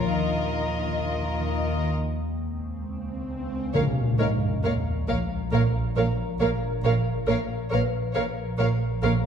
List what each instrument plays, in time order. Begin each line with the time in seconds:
Already playing: synth drone A#1, violin section F4 A#4 C#5
0.09 synth drone D#2, double bass section D#2, cello section D#3, violin section D#5, swell
1.91 synth drone C#2
3.73 synth drone A#1, double bass section A#1, timpani A#2, cello section A#2, viola section A#4, violin section C#5 F5, sub drop
4.19 double bass section A#1, cello section A#2, celesta D#4 D#5, viola section A#4, violin section C#5 F5
4.64 double bass section A#1, cello section A#2, viola section A#4, violin section C#5 F5
5.08 double bass section A#1, cello section A#2, viola section A#4, violin section C#5 F5
5.52 double bass section A#1, cello section A#2, viola section A#4, violin section C#5 F5
5.96 double bass section A#1, cello section A#2, viola section A#4, violin section C#5 F5
6.40 double bass section A#1, cello section A#2, viola section A#4, violin section C#5 F5
6.84 double bass section A#1, cello section A#2, viola section A#4, violin section C#5 F5
7.27 synth drone A#1, double bass section A#1, cello section A#2, viola section A#4, violin section C#5 F5
7.72 double bass section A#1, cello section A#2, viola section A#4, celesta B4, violin section C#5 F5
8.15 double bass section A#1, cello section A#2, viola section A#4, violin section C#5 F5
8.58 double bass section A#1, cello section A#2, viola section A#4, violin section C#5 F5
9.02 double bass section A#1, cello section A#2, viola section A#4, violin section C#5 F5